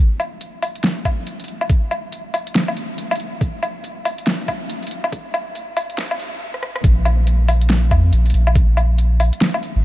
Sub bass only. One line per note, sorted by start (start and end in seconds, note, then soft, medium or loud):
0.00 1.07 A#1 medium
1.05 1.25 F2 medium
1.27 1.47 A#1 loud
1.48 2.45 A#1 medium
2.90 3.19 G#1 loud
3.20 3.95 A#1 medium
3.97 4.16 A#1 medium
5.12 6.21 A#1 loud
6.20 6.41 F2 medium
6.84 7.93 A#1 medium
7.91 8.11 F2 medium
8.13 8.33 A#1 loud
8.34 9.31 A#1 medium
9.76 9.85 G#1 loud